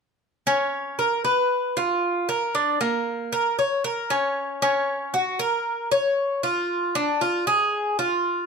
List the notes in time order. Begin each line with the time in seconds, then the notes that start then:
0.47 C#4
0.99 A#4
1.25 B4
1.77 F4
2.29 A#4
2.55 D4
2.81 A#3
3.33 A#4
3.59 C#5
3.84 A#4
4.10 C#4
4.62 C#4
5.14 F#4
5.39 A#4
5.92 C#5
6.43 F4
6.95 D4
7.21 F4
7.47 G#4
7.99 F4